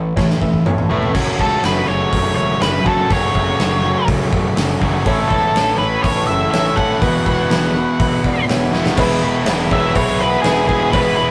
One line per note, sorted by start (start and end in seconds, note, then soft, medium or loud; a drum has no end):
0.00 0.13 A1 medium
0.00 0.15 A2 medium
0.00 0.15 E3 medium
0.00 0.11 E4 medium
0.00 0.12 A4 medium
0.00 0.12 E5 medium
0.16 0.36 A1 medium
0.16 0.39 A2 medium
0.16 0.39 E3 medium
0.16 0.36 E4 medium
0.16 0.36 A4 medium
0.16 0.36 C#5 loud
0.16 kick loud
0.16 snare medium
0.30 snare soft
0.40 0.61 A1 medium
0.40 0.64 A2 medium
0.40 0.64 E3 medium
0.40 0.61 E4 medium
0.40 0.61 A4 medium
0.40 0.61 E5 medium
0.40 kick medium
0.54 kick soft
0.65 0.85 A1 medium
0.65 0.88 A2 medium
0.65 0.88 E3 medium
0.65 0.85 E4 medium
0.65 0.86 A4 medium
0.65 0.86 C#5 loud
0.65 mid tom medium
0.78 mid tom medium
0.89 1.10 F1 medium
0.89 1.13 A2 medium
0.89 1.13 E3 medium
0.89 1.14 A3 medium
0.89 1.10 E4 medium
0.89 1.10 A4 medium
0.89 1.10 C#5 medium
0.89 floor tom medium
1.03 floor tom medium
1.12 1.31 F#1 medium
1.12 2.84 F#2 medium
1.12 2.84 C#3 medium
1.12 2.85 F#3 medium
1.12 2.86 A3 medium
1.12 2.85 C#4 medium
1.12 2.84 F#4 medium
1.12 kick loud
1.12 crash medium
1.39 1.56 C#2 medium
1.39 1.65 A4 medium
1.39 kick medium
1.63 1.81 F#1 loud
1.63 1.90 B4 medium
1.63 snare loud
1.63 open hi-hat medium
1.87 2.05 F#1 medium
1.87 2.60 F#2 medium
1.87 2.61 C#3 medium
1.87 2.61 F#3 medium
1.87 2.63 A3 medium
1.87 2.64 C#4 medium
1.87 2.60 F#4 medium
1.87 2.35 C#5 loud
2.13 2.29 F#1 medium
2.13 kick loud
2.13 open hi-hat medium
2.36 2.54 E1 medium
2.36 2.59 C#5 medium
2.61 2.78 F#1 medium
2.61 3.09 F#2 medium
2.61 3.10 C#3 medium
2.61 3.10 F#3 medium
2.61 3.12 A3 medium
2.61 3.12 C#4 medium
2.61 3.11 F#4 medium
2.61 2.87 B4 medium
2.61 snare loud
2.61 open hi-hat medium
2.85 3.03 F#1 medium
2.85 3.09 F#2 medium
2.85 3.10 C#3 medium
2.85 3.10 F#3 medium
2.85 3.12 A3 medium
2.85 3.12 C#4 medium
2.85 3.09 F#4 medium
2.85 3.10 A4 medium
2.85 kick medium
3.10 3.27 F#1 medium
3.10 4.80 F#2 medium
3.10 4.81 C#3 medium
3.10 4.81 F#3 medium
3.10 4.81 A3 medium
3.10 4.80 C#4 loud
3.10 4.79 F#4 medium
3.10 4.06 C#5 medium
3.10 kick loud
3.10 open hi-hat soft
3.35 3.51 F#1 medium
3.35 kick medium
3.60 3.93 F#1 medium
3.60 snare loud
3.60 open hi-hat soft
3.83 4.57 F#2 medium
3.83 4.57 C#3 medium
3.83 4.57 F#3 medium
3.83 4.56 A3 medium
3.83 4.56 C#4 medium
3.83 4.56 F#4 medium
4.08 4.25 F#1 medium
4.08 kick loud
4.08 open hi-hat medium
4.33 4.49 F#1 medium
4.33 kick medium
4.57 4.74 F#1 medium
4.57 5.05 F#2 medium
4.57 5.05 C#3 medium
4.57 5.05 F#3 medium
4.57 5.05 A3 medium
4.57 5.06 C#4 medium
4.57 5.07 F#4 medium
4.57 snare loud
4.57 open hi-hat medium
4.80 4.98 F#1 medium
4.80 5.06 F#2 medium
4.80 5.04 C#3 medium
4.80 5.05 F#3 medium
4.80 5.05 A3 medium
4.80 5.05 C#4 medium
4.80 5.04 F#4 medium
4.80 kick medium
5.05 5.22 A1 medium
5.05 6.76 A2 medium
5.05 6.79 E3 medium
5.05 6.77 A3 medium
5.05 6.76 C#4 medium
5.05 5.26 E4 loud
5.05 5.26 A4 loud
5.05 6.75 A4 medium
5.05 5.26 C#5 loud
5.05 kick loud
5.05 open hi-hat medium
5.28 5.48 E1 medium
5.28 5.51 E4 medium
5.28 5.78 A4 medium
5.28 5.51 A4 medium
5.28 5.51 C#5 loud
5.28 kick medium
5.55 5.72 A1 medium
5.55 5.75 E4 medium
5.55 5.76 A4 medium
5.55 5.76 C#5 medium
5.55 snare loud
5.55 open hi-hat medium
5.78 5.96 A1 medium
5.78 6.50 A2 medium
5.78 6.52 E3 medium
5.78 6.52 A3 medium
5.78 6.52 C#4 medium
5.78 6.00 E4 medium
5.78 6.51 A4 medium
5.78 6.00 A4 medium
5.78 6.04 B4 medium
5.78 6.00 C#5 medium
6.02 6.21 A1 medium
6.02 6.24 E4 medium
6.02 6.25 A4 medium
6.02 6.27 C#5 medium
6.02 kick loud
6.02 open hi-hat medium
6.06 6.25 B4 medium
6.27 6.45 F#1 medium
6.27 6.49 E4 medium
6.27 6.49 A4 medium
6.27 6.49 B4 medium
6.27 6.50 E5 medium
6.51 6.70 A1 medium
6.51 7.00 A2 medium
6.51 7.03 E3 medium
6.51 7.01 A3 medium
6.51 7.01 C#4 medium
6.51 6.72 E4 medium
6.51 6.73 A4 medium
6.51 7.01 A4 medium
6.51 6.73 C#5 loud
6.51 6.78 E5 loud
6.51 snare loud
6.51 open hi-hat medium
6.76 6.94 A1 loud
6.76 7.01 A2 medium
6.76 7.01 E3 medium
6.76 7.01 A3 medium
6.76 7.01 C#4 medium
6.76 6.98 E4 medium
6.76 7.00 A4 medium
6.76 6.98 C#5 medium
6.76 8.44 F#5 loud
6.76 kick medium
7.00 7.19 E1 medium
7.00 8.71 E2 medium
7.00 8.72 B2 medium
7.00 8.72 E3 medium
7.00 8.72 B3 medium
7.00 7.21 E4 loud
7.00 8.72 E4 medium
7.00 7.22 F#4 medium
7.00 8.71 F#4 medium
7.00 7.22 B4 loud
7.00 kick loud
7.00 open hi-hat medium
7.25 7.43 E1 medium
7.25 7.46 E4 loud
7.25 7.46 F#4 medium
7.25 7.46 B4 loud
7.25 kick medium
7.50 7.83 E1 loud
7.50 7.71 E4 medium
7.50 7.71 F#4 medium
7.50 7.71 B4 loud
7.50 snare loud
7.50 open hi-hat soft
7.75 8.47 E2 medium
7.75 8.47 B2 medium
7.75 8.48 E3 medium
7.75 8.48 B3 medium
7.75 7.95 E4 medium
7.75 8.48 E4 medium
7.75 8.48 F#4 medium
7.75 7.96 F#4 medium
7.75 7.96 B4 medium
8.00 8.16 E1 medium
8.00 8.20 E4 medium
8.00 8.20 F#4 medium
8.00 8.20 B4 loud
8.00 kick loud
8.00 open hi-hat medium
8.24 8.41 E1 medium
8.24 8.45 E4 medium
8.24 8.45 F#4 medium
8.24 8.45 D5 loud
8.24 kick medium
8.48 8.66 E1 medium
8.48 8.96 E2 medium
8.48 8.96 B2 medium
8.48 8.97 E3 medium
8.48 8.97 B3 medium
8.48 8.69 E4 loud
8.48 8.97 E4 medium
8.48 8.69 F#4 loud
8.48 8.98 F#4 medium
8.48 8.69 C#5 loud
8.48 snare loud
8.48 open hi-hat medium
8.72 8.97 E1 loud
8.72 8.96 E2 medium
8.72 8.96 B2 medium
8.72 8.97 E3 medium
8.72 8.97 B3 medium
8.72 8.97 E4 medium
8.72 8.93 E4 medium
8.72 8.96 F#4 medium
8.72 8.93 F#4 medium
8.72 8.94 B4 medium
8.72 snare medium
8.86 snare medium
8.97 9.18 E1 medium
8.97 9.95 E2 medium
8.97 9.47 B2 medium
8.97 9.25 E3 medium
8.97 11.31 G#3 medium
8.97 9.24 G#3 medium
8.97 11.31 B3 medium
8.97 9.23 B3 medium
8.97 11.31 E4 medium
8.97 9.18 E4 loud
8.97 9.21 E4 medium
8.97 9.18 G#4 loud
8.97 11.31 B4 medium
8.97 9.18 B4 loud
8.97 kick loud
8.97 crash loud
8.97 cowbell medium
9.22 9.43 E1 loud
9.22 9.45 E3 medium
9.22 9.46 G#3 medium
9.22 9.47 B3 medium
9.22 9.48 E4 medium
9.22 9.42 E4 medium
9.22 9.43 G#4 medium
9.22 9.43 B4 loud
9.45 9.67 E1 medium
9.45 9.97 E3 medium
9.45 9.96 G#3 medium
9.45 9.97 B3 medium
9.45 9.66 E4 medium
9.45 9.98 E4 medium
9.45 9.66 G#4 medium
9.45 9.67 B4 loud
9.45 snare loud
9.45 open hi-hat medium
9.45 cowbell medium
9.71 9.91 E1 loud
9.71 10.92 E2 medium
9.71 10.93 B2 medium
9.71 10.96 E3 medium
9.71 9.91 E4 medium
9.71 9.91 G#4 medium
9.71 9.91 C#5 medium
9.71 9.95 E5 loud
9.71 kick medium
9.95 10.36 B1 medium
9.95 10.45 E2 medium
9.95 10.45 B2 loud
9.95 10.22 E3 loud
9.95 10.20 G#3 medium
9.95 10.19 B3 loud
9.95 10.15 E4 medium
9.95 10.19 E4 loud
9.95 10.16 G#4 loud
9.95 10.16 B4 loud
9.95 10.21 C#5 medium
9.95 kick medium
9.95 open hi-hat medium
9.95 cowbell medium
10.19 10.44 E3 medium
10.19 10.44 G#3 medium
10.19 10.45 B3 medium
10.19 10.47 E4 medium
10.19 10.40 E4 medium
10.19 10.40 G#4 medium
10.19 10.41 B4 medium
10.19 10.40 B4 medium
10.19 cowbell medium
10.42 10.71 E3 medium
10.42 10.70 G#3 medium
10.42 10.65 E4 medium
10.42 10.67 G#4 medium
10.42 10.65 G#4 medium
10.42 10.65 B4 medium
10.42 snare loud
10.42 open hi-hat medium
10.42 cowbell medium
10.46 10.66 E1 medium
10.46 10.69 B3 medium
10.46 10.68 E4 medium
10.68 10.89 E1 medium
10.68 10.94 E3 soft
10.68 10.93 G#3 medium
10.68 10.94 B3 medium
10.68 10.95 E4 medium
10.68 10.89 E4 medium
10.68 10.91 G#4 medium
10.68 10.89 G#4 medium
10.68 10.90 B4 medium
10.68 kick medium
10.92 11.31 E1 medium
10.92 11.31 E2 medium
10.92 11.31 B2 medium
10.92 11.20 E3 medium
10.92 11.18 G#3 medium
10.92 11.17 B3 loud
10.92 11.13 E4 loud
10.92 11.17 E4 loud
10.92 11.14 G#4 loud
10.92 11.15 B4 loud
10.92 11.14 B4 loud
10.92 kick loud
10.92 open hi-hat medium
10.92 cowbell loud
11.17 11.31 E3 medium
11.17 11.31 G#3 medium
11.17 11.31 B3 medium
11.17 11.31 E4 medium
11.17 11.31 G#4 medium
11.17 11.31 B4 medium